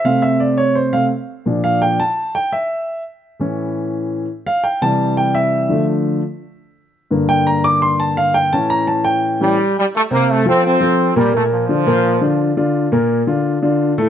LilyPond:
<<
  \new Staff \with { instrumentName = "Grand piano" } { \time 4/4 \key g \dorian \tempo 4 = 170 f''8 e''8 d''8 cis''8 c''8 f''8 r4 | r8 f''8 g''8 a''4 g''8 e''4~ | e''8 r2. r8 | r8 f''8 g''8 a''4 g''8 e''4~ |
e''8 r2. r8 | r8 g''8 bes''8 d'''8 c'''8 a''8 f''8 g''8 | a''8 bes''8 a''8 g''2~ g''16 r16 | r8 <c c' c''>4 <f f' a'>4 <f f' a'>4 <bes, bes bes'>8 |
<bes, bes bes'>4 <d d' f'>8 <bes, bes bes'>4 <d d' f'>4 <d d' f'>8~ | <d d' f'>8 <bes, bes bes'>4 <d d' f'>4 <d d' f'>4 <a, a a'>8 | }
  \new Staff \with { instrumentName = "Grand piano" } { \clef bass \time 4/4 \key g \dorian <c a c'>2~ <c a c'>8 <c a c'>8 r4 | <bes, f d'>4. r2 r8 | r4. <a, e cis'>2~ <a, e cis'>8 | r4. <c e g>2~ <c e g>8 |
<d f a>4. r2 r8 | <g, d bes>1 | <a, e cis'>2~ <a, e cis'>8 <a, e cis'>8 r4 | r1 |
r1 | r1 | }
  \new Staff \with { instrumentName = "Trombone section" } { \time 4/4 \key g \dorian r1 | r1 | r1 | r1 |
r1 | r1 | r2 r8 g4 g8 | a8 bes8 a8 c'8 c'4. g8 |
a8 f2. r8 | r1 | }
>>